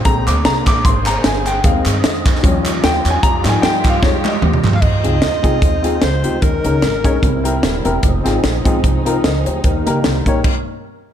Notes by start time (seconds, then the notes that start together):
0.04 A#1 D3 G#3 A#3 C4 D4 G#4 C5 A#5, kick, closed hi-hat
0.27 D2 D6, clap, closed hi-hat
0.45 C2 A#5, snare, closed hi-hat
0.67 A#1 D6, kick, clap, closed hi-hat
0.85 G#1 C6, kick, closed hi-hat
1.06 A#5, clap, closed hi-hat
1.24 G1 G#5, snare, closed hi-hat
1.46 G5, clap, closed hi-hat
1.64 D#2 D#3 G#3 B3 C4 D#4 G#4 D#5 F5, kick, closed hi-hat
1.70 C4
1.86 G2, clap, closed hi-hat
2.04 snare, closed hi-hat
2.26 kick, clap, closed hi-hat
2.35 snare
2.43 D#2 F3 G3 C#4 F4 F#4 D#5, kick, closed hi-hat
2.48 G4
2.66 clap, closed hi-hat
2.83 D#2 G5, snare, closed hi-hat
3.05 E2, clap, closed hi-hat
3.10 G#5
3.22 F2 G3 F4 G4 D#5 A#5, kick, closed hi-hat
3.43 G#2 F3 G3 D#4, snare, clap, closed hi-hat
3.49 G#5
3.62 G2 G5, snare, closed hi-hat
3.85 kick, clap, closed hi-hat
3.89 F5
4.02 F2 G3 G#3 D#4 C#5, kick, snare
4.25 D#5, clap, high tom
4.42 D#2, mid tom
4.53 mid tom
4.64 E2, clap, floor tom
4.73 F5, floor tom
4.81 F2 G#3 C4 D#4 F4 B4 D#5, kick, crash
4.86 C5
5.03 C#2 C4 D#4 F4 G#4, closed hi-hat
5.21 D#2, snare, closed hi-hat
5.43 C2 C4 D#4 F4 G#4, kick, closed hi-hat
5.62 D#2, kick, closed hi-hat
5.83 C4 D#4 F4 G#4, closed hi-hat
6.02 C#2 C5, snare, closed hi-hat
6.23 D2 C4 D#4 F4 G4, closed hi-hat
6.41 D#2 D#3 G#3 A#3 C#4 D#4 G#4 A#4, kick, closed hi-hat
6.47 A#4
6.64 C#2 C#4 D#4 G#4 A#4, closed hi-hat
6.82 G#1, snare, closed hi-hat
7.04 A#1 C#4 D#4 G#4 C#5, kick, closed hi-hat
7.22 C2 C3 G3 A#3 C4 E4 A#4, kick, closed hi-hat
7.44 C4 E4 G4 A#4, closed hi-hat
7.63 D#1, snare, closed hi-hat
7.84 E1 C4 E4 G4 A#4, closed hi-hat
8.03 F1 F3 G#3 C4 D#4 G4, kick, closed hi-hat
8.08 G#4
8.24 G#1 C4 D#4 F4 G#4, snare, closed hi-hat
8.44 A#1, snare, closed hi-hat
8.65 G#1 C4 D#4 F4 G#4, kick, closed hi-hat
8.84 C2, kick, closed hi-hat
9.05 C4 D#4 F4 A#4, closed hi-hat
9.24 C#2 A#4 D#5, snare, closed hi-hat
9.46 D2 G4 C5, closed hi-hat
9.64 D#2 D#3 G3 A#3 D#4 A#4, kick, closed hi-hat
9.86 C#2 A#3 D#4 G4 A#4, closed hi-hat
10.04 C2 C5, snare, closed hi-hat
10.26 A#1 A#3 D#4 G4 A#4 C#5, kick, closed hi-hat
10.44 kick, crash